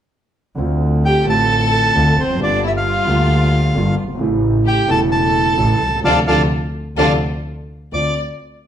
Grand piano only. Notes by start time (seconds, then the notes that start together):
0.55 D2 D3 A3 C4
0.60 F4
1.25 A1 A2 D3 A3 C4
1.29 F4
1.95 D2 D3 A3 C4 F4
2.23 E2
2.29 F2
2.35 F#2 D3
2.40 G1 G2 G3 A#3 F4
3.06 D2 D3 G3 A#3 F4
3.74 G1 G2 D3 G3 A#3 F4
4.04 F#1
4.08 G1
4.15 G#1
4.19 A1 A2 C#3 E3 A3
4.23 E4
4.87 E1 E2 C#3 E3 A3
4.91 E4
5.57 A1 A2 C#3 E3 A3 E4
5.87 B1
5.94 C2 C#2
6.04 C3 D3 F3
6.28 C3 D3 F3
6.98 C3 D3 F3
7.93 D2 C4 D4 F4